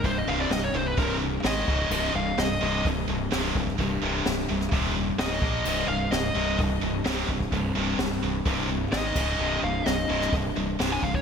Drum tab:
CC |----------------|x---------------|----------------|x---------------|
HH |o---o---o---o---|----o---o---o---|o---o---o---o---|----o---o---o---|
SD |----o-------o---|----o-------o---|----o--o----o---|----o-------o---|
BD |o-------o-----o-|--------o-----oo|o-------o-----o-|--------o-----oo|

CC |--------------x-|----------------|
HH |o---o---o---o---|----o---o---o---|
SD |----o-------o-o-|----o--o----o---|
BD |o-------o-----o-|--------o-----oo|